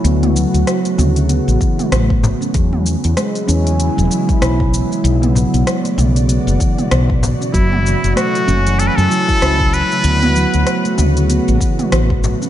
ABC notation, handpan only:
X:1
M:4/4
L:1/16
Q:"Swing 16ths" 1/4=96
K:Dlyd
V:1 name="Handpan"
B, B, F,3 A, C, z B,2 E, z4 C | F, z3 G,2 C E,2 F, F, E z3 G, | B, B, F,3 A, C, z B,2 E, z4 C | F, z3 A,2 C E,2 F, F, E z3 A, |
B, B, F,3 A, C, z B,2 E, z4 C |]